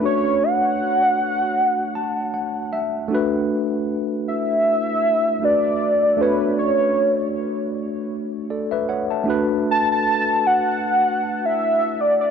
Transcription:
0.00 3.06 A3 medium
0.00 3.06 D4 medium
0.00 3.07 F#4 medium
0.05 0.45 C#5 medium
0.05 3.08 C#5 medium
0.43 2.73 F#5 loud
1.95 2.31 A5 medium
2.34 2.70 F#5 medium
2.73 3.08 E5 medium
3.08 5.37 A3 medium
3.08 5.38 D4 medium
3.12 5.39 F#4 medium
3.12 5.40 B4 medium
4.28 5.46 E5 loud
5.41 6.15 A3 soft
5.41 6.17 D4 soft
5.41 6.19 F#4 soft
5.41 6.20 B4 soft
5.41 6.23 D5 medium
6.17 9.22 A3 medium
6.17 9.23 D4 medium
6.21 9.24 F#4 medium
6.21 6.58 B4 medium
6.21 8.48 C#5 medium
6.59 7.31 C#5 medium
8.50 8.71 A4 soft
8.50 8.71 D5 medium
8.71 8.88 B4 medium
8.71 8.88 E5 medium
8.89 9.10 C#5 medium
8.89 9.09 F#5 medium
9.11 9.48 E5 soft
9.11 9.47 A5 medium
9.24 12.30 A3 medium
9.24 12.31 D4 medium
9.28 12.31 F#4 medium
9.28 12.31 B4 medium
9.71 9.89 A5 loud
9.92 10.48 A5 loud
10.47 11.47 F#5 loud
11.45 12.02 E5 loud
12.01 12.20 D5 medium
12.20 12.31 D5 medium

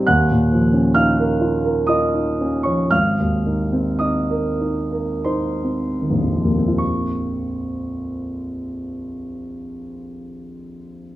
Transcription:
0.07 2.88 D#2 soft
0.07 0.92 F#5 soft
0.07 0.96 F#6 medium
0.31 0.66 A#2 soft
0.52 0.88 F3 soft
0.73 1.10 C#4 soft
0.94 1.32 D#4 soft
0.94 1.85 F5 soft
0.94 1.89 F6 medium
1.20 1.56 A#4 soft
1.41 1.79 F4 soft
1.64 2.04 A#4 soft
1.87 2.28 F4 soft
1.87 2.60 D#5 soft
1.87 2.64 D#6 medium
2.14 2.55 D#4 soft
2.41 2.81 C#4 soft
2.63 2.91 F3 soft
2.63 2.89 C#5 soft
2.63 2.90 C#6 soft
2.91 6.76 G#1 soft
2.91 3.97 F5 soft
2.91 4.00 F6 medium
3.19 3.62 D#2 soft
3.46 3.90 D#3 soft
3.72 4.18 C4 soft
3.99 4.48 D#4 soft
3.99 5.23 D#5 soft
3.99 5.27 D#6 soft
4.30 4.80 A#4 soft
4.61 5.13 D#4 soft
4.92 5.49 A#4 soft
5.24 5.86 D#4 soft
5.24 6.74 C5 soft
5.24 6.78 C6 soft
5.63 6.26 C4 soft
6.02 6.64 D#3 soft
6.10 9.93 A#1 soft
6.21 10.05 F2 soft
6.33 10.16 F3 soft
6.42 6.79 D#2 soft
6.42 10.28 A#3 soft
6.57 10.40 C4 soft
6.68 10.51 F4 soft
6.78 10.61 C#6 soft

